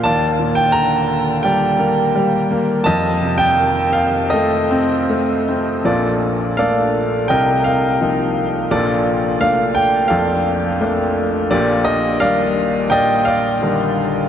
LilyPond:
<<
  \new Staff \with { instrumentName = "Grand piano" } { \time 4/4 \key bes \major \tempo 4 = 85 << { a''8. g''16 bes''4 g''4. r8 | a''8. g''8. f''8 ees''4. r8 | d''4 f''4 g''8 f''4 r8 | d''4 f''8 g''8 f''4. r8 |
d''8 ees''8 f''4 g''8 f''4 r8 | } \\ { d''2 d''2 | ees''2 a'2 | <f' a'>4 <a' d''>4 <bes' ees''>8 bes'4. | <f' a'>2 <a' d''>2 |
g'4 d''4 <d'' ees''>8 d''4. | } >> }
  \new Staff \with { instrumentName = "Grand piano" } { \clef bass \time 4/4 \key bes \major ees,8 bes,8 d4 g8 bes8 g8 bes8 | f,8 c8 ees4 a8 c'8 a8 c'8 | <bes,, bes,>4 <a bes d'>4 <c, c>4 <f bes ees'>4 | <bes,, bes,>4 <a bes d'>4 f,4 <a bes d'>4 |
<bes,, bes,>4 <ees g d'>4 bes,4 <d ees g>4 | }
>>